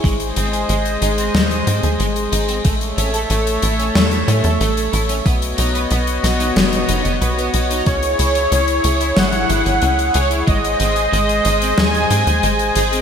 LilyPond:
<<
  \new Staff \with { instrumentName = "Supersaw synth" } { \time 4/4 \key gis \phrygian \tempo 4 = 92 r1 | r1 | r1 | cis''2 fis''4. cis''8 |
dis''2 gis''4. gis'8 | }
  \new Staff \with { instrumentName = "Analog synth pad" } { \time 4/4 \key gis \phrygian <gis gis' bis' dis''>1 | <a a' cis'' e''>1 | <b fis' cis'' dis''>1 | <e' gis'>1 |
<gis bis' dis''>1 | }
  \new Staff \with { instrumentName = "Overdriven electric guitar" } { \time 4/4 \key gis \phrygian gis16 r16 bis16 gis'16 gis16 r16 dis'16 bis16 gis16 r16 bis16 gis'16 gis16 r16 dis'16 bis16 | a16 r16 cis'16 a'16 a16 r16 e'16 cis'16 a16 r16 cis'16 a'16 a16 r16 e'16 cis'16 | b16 r16 dis'16 b'16 b16 r16 fis'16 dis'16 b16 r16 dis'16 b16 b'16 b16 fis'16 dis'16 | cis'16 r16 e'16 cis''16 cis'16 r16 gis'16 e'16 cis'16 r16 e'16 cis''16 cis'16 r16 gis'16 e'16 |
gis16 r16 bis16 gis'16 gis16 r16 dis'16 bis16 gis16 r16 bis16 gis'16 gis16 r16 dis'16 bis16 | }
  \new Staff \with { instrumentName = "Analog synth bass" } { \clef bass \time 4/4 \key gis \phrygian gis,,8 gis,,8 gis,,8 gis,,8 dis,8 gis,16 dis,16 gis,,8 gis,,8 | a,,8 a,,8 a,,8 a,,8 e,8 a,16 e,16 a,,8 a,,8 | b,,8 b,,8 b,,8 b,,8 fis,,8 fis,,16 fis,,16 b,,8 b,,8 | cis,8 cis,8 cis,8 cis,8 gis,,8 gis,,16 gis,,16 cis,8 cis,8 |
gis,,8 gis,,8 gis,,8 gis,,8 dis,8 gis,16 dis,16 gis,,8 gis,,8 | }
  \new DrumStaff \with { instrumentName = "Drums" } \drummode { \time 4/4 <hh bd>16 hh16 hh16 hh16 hh16 hh16 hh16 hh16 <hh sn>16 hh16 hh16 hh16 hh16 hh16 hh16 hh16 | <hh bd>16 hh16 hh16 hh16 hh16 hh16 hh16 hh16 <hh sn>16 hh16 hh16 hh16 hh16 hh16 hh16 hh16 | <hh bd>16 hh16 hh16 hh16 hh16 hh16 <hh sn>16 hh16 <hh sn>16 hh16 hh16 hh16 hh16 hh16 hh16 hh16 | <hh bd>16 hh16 hh16 hh16 hh16 hh16 hh16 hh16 <hh sn>16 hh16 hh16 hh16 hh16 hh16 hh16 hh16 |
<hh bd>16 hh16 hh16 hh16 hh16 hh16 hh16 hh16 <hh sn>16 hh16 hh16 hh16 hh16 hh16 hh16 hh16 | }
>>